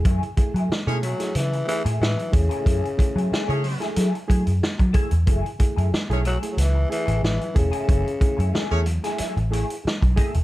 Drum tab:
HH |xxxx-xxxxxxx-xxx|xxxx-xoxxxxx-xxx|xxxx-xxxx-xx-xxx|xxxx--xxxxxx-xxx|
SD |----o--oo---o---|----o--oo---o---|----o---o---o---|----o--oo---o---|
BD |o-o-----------o-|o-o-------o--oo-|o-o-----------o-|o-o----------oo-|